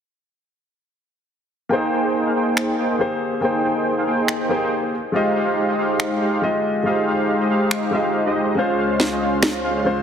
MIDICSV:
0, 0, Header, 1, 5, 480
1, 0, Start_track
1, 0, Key_signature, -4, "major"
1, 0, Tempo, 428571
1, 1917, Time_signature, 4, 2, 24, 8
1, 11229, End_track
2, 0, Start_track
2, 0, Title_t, "Grand piano"
2, 0, Program_c, 0, 0
2, 1895, Note_on_c, 0, 58, 81
2, 1909, Note_on_c, 0, 79, 74
2, 1925, Note_on_c, 0, 68, 71
2, 1940, Note_on_c, 0, 72, 93
2, 2100, Control_c, 0, 64, 127
2, 3320, Note_off_c, 0, 58, 0
2, 3327, Note_off_c, 0, 79, 0
2, 3335, Note_off_c, 0, 68, 0
2, 3342, Note_off_c, 0, 72, 0
2, 3346, Note_on_c, 0, 58, 74
2, 3354, Note_on_c, 0, 67, 73
2, 3360, Note_on_c, 0, 68, 69
2, 3369, Note_on_c, 0, 72, 87
2, 3797, Note_off_c, 0, 58, 0
2, 3809, Note_off_c, 0, 67, 0
2, 3812, Note_off_c, 0, 68, 0
2, 3814, Note_on_c, 0, 58, 74
2, 3817, Note_off_c, 0, 72, 0
2, 3829, Note_on_c, 0, 79, 67
2, 3844, Note_on_c, 0, 68, 71
2, 3859, Note_on_c, 0, 72, 84
2, 4999, Note_off_c, 0, 58, 0
2, 5007, Note_off_c, 0, 79, 0
2, 5014, Note_off_c, 0, 68, 0
2, 5022, Note_off_c, 0, 72, 0
2, 5025, Note_on_c, 0, 58, 75
2, 5033, Note_on_c, 0, 67, 75
2, 5040, Note_on_c, 0, 68, 74
2, 5047, Note_on_c, 0, 72, 84
2, 5498, Note_off_c, 0, 58, 0
2, 5502, Note_off_c, 0, 67, 0
2, 5505, Note_off_c, 0, 68, 0
2, 5509, Note_off_c, 0, 72, 0
2, 5533, Control_c, 0, 64, 0
2, 5733, Note_on_c, 0, 56, 78
2, 5738, Control_c, 0, 64, 127
2, 5748, Note_on_c, 0, 65, 77
2, 5763, Note_on_c, 0, 67, 73
2, 5778, Note_on_c, 0, 75, 94
2, 7159, Note_off_c, 0, 56, 0
2, 7166, Note_off_c, 0, 65, 0
2, 7174, Note_off_c, 0, 67, 0
2, 7181, Note_off_c, 0, 75, 0
2, 7184, Note_on_c, 0, 56, 81
2, 7192, Note_on_c, 0, 65, 74
2, 7199, Note_on_c, 0, 67, 73
2, 7207, Note_on_c, 0, 75, 91
2, 7636, Note_off_c, 0, 56, 0
2, 7648, Note_off_c, 0, 65, 0
2, 7652, Note_off_c, 0, 67, 0
2, 7653, Note_on_c, 0, 56, 74
2, 7656, Note_off_c, 0, 75, 0
2, 7668, Note_on_c, 0, 65, 71
2, 7683, Note_on_c, 0, 67, 71
2, 7698, Note_on_c, 0, 75, 84
2, 8837, Note_off_c, 0, 56, 0
2, 8846, Note_off_c, 0, 65, 0
2, 8854, Note_off_c, 0, 67, 0
2, 8854, Note_on_c, 0, 56, 78
2, 8861, Note_off_c, 0, 75, 0
2, 8868, Note_on_c, 0, 65, 69
2, 8883, Note_on_c, 0, 67, 71
2, 8898, Note_on_c, 0, 75, 86
2, 9557, Note_off_c, 0, 56, 0
2, 9566, Note_off_c, 0, 65, 0
2, 9574, Note_off_c, 0, 67, 0
2, 9574, Note_on_c, 0, 56, 84
2, 9581, Note_off_c, 0, 75, 0
2, 9588, Note_on_c, 0, 61, 74
2, 9603, Note_on_c, 0, 65, 76
2, 9610, Control_c, 0, 64, 0
2, 9619, Note_on_c, 0, 72, 92
2, 9835, Control_c, 0, 64, 127
2, 10999, Note_off_c, 0, 56, 0
2, 11006, Note_off_c, 0, 61, 0
2, 11014, Note_off_c, 0, 65, 0
2, 11021, Note_off_c, 0, 72, 0
2, 11024, Note_on_c, 0, 56, 85
2, 11032, Note_on_c, 0, 61, 75
2, 11039, Note_on_c, 0, 65, 79
2, 11047, Note_on_c, 0, 72, 91
2, 11229, Note_off_c, 0, 56, 0
2, 11229, Note_off_c, 0, 61, 0
2, 11229, Note_off_c, 0, 65, 0
2, 11229, Note_off_c, 0, 72, 0
2, 11229, End_track
3, 0, Start_track
3, 0, Title_t, "Supersaw synth"
3, 0, Program_c, 1, 81
3, 1917, Note_on_c, 1, 68, 74
3, 1918, Note_on_c, 1, 58, 81
3, 1918, Note_on_c, 1, 63, 78
3, 1918, Note_on_c, 1, 72, 76
3, 1918, Note_on_c, 1, 79, 89
3, 2131, Note_off_c, 1, 58, 0
3, 2131, Note_off_c, 1, 63, 0
3, 2131, Note_off_c, 1, 68, 0
3, 2131, Note_off_c, 1, 72, 0
3, 2131, Note_off_c, 1, 79, 0
3, 2157, Note_on_c, 1, 58, 82
3, 2157, Note_on_c, 1, 79, 92
3, 2158, Note_on_c, 1, 63, 75
3, 2158, Note_on_c, 1, 68, 77
3, 2158, Note_on_c, 1, 72, 78
3, 2496, Note_off_c, 1, 58, 0
3, 2496, Note_off_c, 1, 72, 0
3, 2496, Note_off_c, 1, 79, 0
3, 2497, Note_off_c, 1, 63, 0
3, 2497, Note_off_c, 1, 68, 0
3, 2528, Note_on_c, 1, 58, 69
3, 2528, Note_on_c, 1, 72, 62
3, 2528, Note_on_c, 1, 77, 75
3, 2529, Note_on_c, 1, 63, 62
3, 2529, Note_on_c, 1, 68, 64
3, 2611, Note_off_c, 1, 58, 0
3, 2611, Note_off_c, 1, 63, 0
3, 2611, Note_off_c, 1, 68, 0
3, 2611, Note_off_c, 1, 72, 0
3, 2611, Note_off_c, 1, 77, 0
3, 2637, Note_on_c, 1, 58, 89
3, 2637, Note_on_c, 1, 63, 79
3, 2637, Note_on_c, 1, 72, 82
3, 2638, Note_on_c, 1, 68, 76
3, 2638, Note_on_c, 1, 79, 96
3, 3091, Note_off_c, 1, 58, 0
3, 3091, Note_off_c, 1, 63, 0
3, 3091, Note_off_c, 1, 68, 0
3, 3091, Note_off_c, 1, 72, 0
3, 3091, Note_off_c, 1, 79, 0
3, 3117, Note_on_c, 1, 63, 81
3, 3118, Note_on_c, 1, 58, 92
3, 3118, Note_on_c, 1, 68, 86
3, 3118, Note_on_c, 1, 72, 86
3, 3118, Note_on_c, 1, 79, 100
3, 3216, Note_off_c, 1, 63, 0
3, 3216, Note_off_c, 1, 79, 0
3, 3217, Note_off_c, 1, 58, 0
3, 3217, Note_off_c, 1, 68, 0
3, 3217, Note_off_c, 1, 72, 0
3, 3249, Note_on_c, 1, 58, 80
3, 3249, Note_on_c, 1, 63, 76
3, 3249, Note_on_c, 1, 68, 75
3, 3249, Note_on_c, 1, 72, 76
3, 3249, Note_on_c, 1, 79, 88
3, 3396, Note_off_c, 1, 58, 0
3, 3396, Note_off_c, 1, 68, 0
3, 3396, Note_off_c, 1, 72, 0
3, 3397, Note_off_c, 1, 63, 0
3, 3397, Note_off_c, 1, 79, 0
3, 3838, Note_on_c, 1, 63, 73
3, 3838, Note_on_c, 1, 79, 92
3, 3839, Note_on_c, 1, 58, 79
3, 3839, Note_on_c, 1, 68, 75
3, 3839, Note_on_c, 1, 72, 73
3, 4051, Note_off_c, 1, 63, 0
3, 4051, Note_off_c, 1, 68, 0
3, 4051, Note_off_c, 1, 79, 0
3, 4052, Note_off_c, 1, 58, 0
3, 4052, Note_off_c, 1, 72, 0
3, 4077, Note_on_c, 1, 63, 77
3, 4077, Note_on_c, 1, 72, 78
3, 4077, Note_on_c, 1, 79, 94
3, 4078, Note_on_c, 1, 58, 83
3, 4078, Note_on_c, 1, 68, 77
3, 4416, Note_off_c, 1, 63, 0
3, 4416, Note_off_c, 1, 72, 0
3, 4416, Note_off_c, 1, 79, 0
3, 4417, Note_off_c, 1, 58, 0
3, 4417, Note_off_c, 1, 68, 0
3, 4448, Note_on_c, 1, 58, 68
3, 4448, Note_on_c, 1, 63, 61
3, 4448, Note_on_c, 1, 68, 66
3, 4449, Note_on_c, 1, 72, 65
3, 4449, Note_on_c, 1, 77, 76
3, 4531, Note_off_c, 1, 58, 0
3, 4531, Note_off_c, 1, 63, 0
3, 4531, Note_off_c, 1, 68, 0
3, 4531, Note_off_c, 1, 72, 0
3, 4531, Note_off_c, 1, 77, 0
3, 4558, Note_on_c, 1, 63, 81
3, 4558, Note_on_c, 1, 68, 79
3, 4558, Note_on_c, 1, 72, 77
3, 4558, Note_on_c, 1, 79, 96
3, 4559, Note_on_c, 1, 58, 86
3, 5011, Note_off_c, 1, 58, 0
3, 5011, Note_off_c, 1, 63, 0
3, 5011, Note_off_c, 1, 68, 0
3, 5011, Note_off_c, 1, 72, 0
3, 5011, Note_off_c, 1, 79, 0
3, 5037, Note_on_c, 1, 58, 91
3, 5037, Note_on_c, 1, 63, 89
3, 5037, Note_on_c, 1, 68, 82
3, 5037, Note_on_c, 1, 72, 84
3, 5037, Note_on_c, 1, 79, 98
3, 5136, Note_off_c, 1, 58, 0
3, 5136, Note_off_c, 1, 63, 0
3, 5136, Note_off_c, 1, 68, 0
3, 5136, Note_off_c, 1, 72, 0
3, 5136, Note_off_c, 1, 79, 0
3, 5168, Note_on_c, 1, 58, 86
3, 5169, Note_on_c, 1, 63, 77
3, 5169, Note_on_c, 1, 68, 77
3, 5169, Note_on_c, 1, 72, 74
3, 5169, Note_on_c, 1, 79, 92
3, 5316, Note_off_c, 1, 58, 0
3, 5316, Note_off_c, 1, 63, 0
3, 5316, Note_off_c, 1, 68, 0
3, 5316, Note_off_c, 1, 72, 0
3, 5316, Note_off_c, 1, 79, 0
3, 5757, Note_on_c, 1, 56, 81
3, 5757, Note_on_c, 1, 63, 72
3, 5757, Note_on_c, 1, 72, 80
3, 5758, Note_on_c, 1, 67, 80
3, 5758, Note_on_c, 1, 77, 94
3, 5971, Note_off_c, 1, 56, 0
3, 5971, Note_off_c, 1, 63, 0
3, 5971, Note_off_c, 1, 67, 0
3, 5971, Note_off_c, 1, 72, 0
3, 5971, Note_off_c, 1, 77, 0
3, 5996, Note_on_c, 1, 56, 83
3, 5996, Note_on_c, 1, 63, 80
3, 5996, Note_on_c, 1, 67, 77
3, 5996, Note_on_c, 1, 72, 80
3, 5996, Note_on_c, 1, 77, 94
3, 6336, Note_off_c, 1, 56, 0
3, 6336, Note_off_c, 1, 63, 0
3, 6336, Note_off_c, 1, 67, 0
3, 6336, Note_off_c, 1, 72, 0
3, 6336, Note_off_c, 1, 77, 0
3, 6367, Note_on_c, 1, 56, 65
3, 6367, Note_on_c, 1, 63, 60
3, 6367, Note_on_c, 1, 67, 61
3, 6367, Note_on_c, 1, 72, 59
3, 6367, Note_on_c, 1, 75, 76
3, 6450, Note_off_c, 1, 56, 0
3, 6450, Note_off_c, 1, 67, 0
3, 6450, Note_off_c, 1, 72, 0
3, 6451, Note_off_c, 1, 63, 0
3, 6451, Note_off_c, 1, 75, 0
3, 6476, Note_on_c, 1, 67, 77
3, 6476, Note_on_c, 1, 72, 81
3, 6477, Note_on_c, 1, 56, 88
3, 6477, Note_on_c, 1, 63, 77
3, 6477, Note_on_c, 1, 77, 93
3, 6930, Note_off_c, 1, 67, 0
3, 6930, Note_off_c, 1, 72, 0
3, 6931, Note_off_c, 1, 56, 0
3, 6931, Note_off_c, 1, 63, 0
3, 6931, Note_off_c, 1, 77, 0
3, 6956, Note_on_c, 1, 56, 96
3, 6956, Note_on_c, 1, 67, 81
3, 6956, Note_on_c, 1, 77, 96
3, 6957, Note_on_c, 1, 63, 83
3, 6957, Note_on_c, 1, 72, 86
3, 7056, Note_off_c, 1, 56, 0
3, 7056, Note_off_c, 1, 63, 0
3, 7056, Note_off_c, 1, 67, 0
3, 7056, Note_off_c, 1, 72, 0
3, 7056, Note_off_c, 1, 77, 0
3, 7086, Note_on_c, 1, 56, 84
3, 7086, Note_on_c, 1, 77, 93
3, 7087, Note_on_c, 1, 63, 75
3, 7087, Note_on_c, 1, 67, 79
3, 7087, Note_on_c, 1, 72, 78
3, 7235, Note_off_c, 1, 56, 0
3, 7235, Note_off_c, 1, 63, 0
3, 7235, Note_off_c, 1, 67, 0
3, 7235, Note_off_c, 1, 72, 0
3, 7235, Note_off_c, 1, 77, 0
3, 7676, Note_on_c, 1, 77, 90
3, 7677, Note_on_c, 1, 56, 79
3, 7677, Note_on_c, 1, 63, 75
3, 7677, Note_on_c, 1, 67, 73
3, 7677, Note_on_c, 1, 72, 78
3, 7890, Note_off_c, 1, 77, 0
3, 7891, Note_off_c, 1, 56, 0
3, 7891, Note_off_c, 1, 63, 0
3, 7891, Note_off_c, 1, 67, 0
3, 7891, Note_off_c, 1, 72, 0
3, 7916, Note_on_c, 1, 77, 98
3, 7917, Note_on_c, 1, 56, 89
3, 7917, Note_on_c, 1, 63, 76
3, 7917, Note_on_c, 1, 67, 81
3, 7917, Note_on_c, 1, 72, 80
3, 8256, Note_off_c, 1, 56, 0
3, 8256, Note_off_c, 1, 63, 0
3, 8256, Note_off_c, 1, 67, 0
3, 8256, Note_off_c, 1, 72, 0
3, 8256, Note_off_c, 1, 77, 0
3, 8287, Note_on_c, 1, 63, 62
3, 8287, Note_on_c, 1, 67, 63
3, 8288, Note_on_c, 1, 56, 70
3, 8288, Note_on_c, 1, 72, 63
3, 8288, Note_on_c, 1, 75, 74
3, 8371, Note_off_c, 1, 56, 0
3, 8371, Note_off_c, 1, 63, 0
3, 8371, Note_off_c, 1, 67, 0
3, 8371, Note_off_c, 1, 72, 0
3, 8371, Note_off_c, 1, 75, 0
3, 8396, Note_on_c, 1, 56, 89
3, 8396, Note_on_c, 1, 67, 83
3, 8396, Note_on_c, 1, 72, 79
3, 8397, Note_on_c, 1, 63, 77
3, 8397, Note_on_c, 1, 77, 94
3, 8850, Note_off_c, 1, 56, 0
3, 8850, Note_off_c, 1, 67, 0
3, 8850, Note_off_c, 1, 72, 0
3, 8850, Note_off_c, 1, 77, 0
3, 8851, Note_off_c, 1, 63, 0
3, 8876, Note_on_c, 1, 67, 64
3, 8876, Note_on_c, 1, 72, 61
3, 8876, Note_on_c, 1, 77, 76
3, 8877, Note_on_c, 1, 56, 71
3, 8877, Note_on_c, 1, 63, 63
3, 9216, Note_off_c, 1, 56, 0
3, 9216, Note_off_c, 1, 63, 0
3, 9216, Note_off_c, 1, 67, 0
3, 9216, Note_off_c, 1, 72, 0
3, 9216, Note_off_c, 1, 77, 0
3, 9247, Note_on_c, 1, 56, 75
3, 9247, Note_on_c, 1, 63, 72
3, 9247, Note_on_c, 1, 72, 69
3, 9248, Note_on_c, 1, 67, 67
3, 9248, Note_on_c, 1, 75, 83
3, 9571, Note_off_c, 1, 56, 0
3, 9571, Note_off_c, 1, 63, 0
3, 9571, Note_off_c, 1, 67, 0
3, 9571, Note_off_c, 1, 72, 0
3, 9571, Note_off_c, 1, 75, 0
3, 9597, Note_on_c, 1, 56, 82
3, 9597, Note_on_c, 1, 61, 78
3, 9597, Note_on_c, 1, 65, 76
3, 9597, Note_on_c, 1, 72, 74
3, 9597, Note_on_c, 1, 77, 86
3, 9810, Note_off_c, 1, 72, 0
3, 9811, Note_off_c, 1, 56, 0
3, 9811, Note_off_c, 1, 61, 0
3, 9811, Note_off_c, 1, 65, 0
3, 9811, Note_off_c, 1, 77, 0
3, 9837, Note_on_c, 1, 56, 84
3, 9837, Note_on_c, 1, 61, 82
3, 9837, Note_on_c, 1, 65, 80
3, 9837, Note_on_c, 1, 72, 77
3, 9837, Note_on_c, 1, 77, 94
3, 10176, Note_off_c, 1, 56, 0
3, 10176, Note_off_c, 1, 61, 0
3, 10176, Note_off_c, 1, 65, 0
3, 10176, Note_off_c, 1, 72, 0
3, 10176, Note_off_c, 1, 77, 0
3, 10207, Note_on_c, 1, 56, 69
3, 10207, Note_on_c, 1, 65, 66
3, 10207, Note_on_c, 1, 75, 77
3, 10208, Note_on_c, 1, 61, 63
3, 10208, Note_on_c, 1, 72, 63
3, 10291, Note_off_c, 1, 56, 0
3, 10291, Note_off_c, 1, 61, 0
3, 10291, Note_off_c, 1, 65, 0
3, 10291, Note_off_c, 1, 72, 0
3, 10291, Note_off_c, 1, 75, 0
3, 10318, Note_on_c, 1, 56, 87
3, 10318, Note_on_c, 1, 61, 78
3, 10318, Note_on_c, 1, 65, 83
3, 10318, Note_on_c, 1, 72, 79
3, 10318, Note_on_c, 1, 77, 97
3, 10771, Note_off_c, 1, 56, 0
3, 10771, Note_off_c, 1, 61, 0
3, 10771, Note_off_c, 1, 65, 0
3, 10771, Note_off_c, 1, 72, 0
3, 10771, Note_off_c, 1, 77, 0
3, 10796, Note_on_c, 1, 61, 83
3, 10796, Note_on_c, 1, 77, 99
3, 10797, Note_on_c, 1, 56, 96
3, 10797, Note_on_c, 1, 65, 83
3, 10797, Note_on_c, 1, 72, 89
3, 10896, Note_off_c, 1, 56, 0
3, 10896, Note_off_c, 1, 61, 0
3, 10896, Note_off_c, 1, 65, 0
3, 10896, Note_off_c, 1, 72, 0
3, 10896, Note_off_c, 1, 77, 0
3, 10926, Note_on_c, 1, 65, 74
3, 10926, Note_on_c, 1, 77, 91
3, 10927, Note_on_c, 1, 56, 82
3, 10927, Note_on_c, 1, 61, 80
3, 10927, Note_on_c, 1, 72, 76
3, 11075, Note_off_c, 1, 56, 0
3, 11075, Note_off_c, 1, 61, 0
3, 11075, Note_off_c, 1, 65, 0
3, 11075, Note_off_c, 1, 72, 0
3, 11075, Note_off_c, 1, 77, 0
3, 11229, End_track
4, 0, Start_track
4, 0, Title_t, "Analog synth pad"
4, 0, Program_c, 2, 89
4, 9597, Note_on_c, 2, 37, 76
4, 9597, Note_on_c, 2, 49, 71
4, 9597, Note_on_c, 2, 65, 70
4, 9597, Note_on_c, 2, 72, 81
4, 11229, Note_off_c, 2, 37, 0
4, 11229, Note_off_c, 2, 49, 0
4, 11229, Note_off_c, 2, 65, 0
4, 11229, Note_off_c, 2, 72, 0
4, 11229, End_track
5, 0, Start_track
5, 0, Title_t, "Drums"
5, 2878, Note_on_c, 9, 26, 88
5, 2990, Note_off_c, 9, 26, 0
5, 4797, Note_on_c, 9, 26, 88
5, 4909, Note_off_c, 9, 26, 0
5, 6717, Note_on_c, 9, 26, 86
5, 6829, Note_off_c, 9, 26, 0
5, 8637, Note_on_c, 9, 26, 84
5, 8749, Note_off_c, 9, 26, 0
5, 10077, Note_on_c, 9, 38, 56
5, 10189, Note_off_c, 9, 38, 0
5, 10556, Note_on_c, 9, 26, 87
5, 10556, Note_on_c, 9, 38, 104
5, 10668, Note_off_c, 9, 26, 0
5, 10668, Note_off_c, 9, 38, 0
5, 11229, End_track
0, 0, End_of_file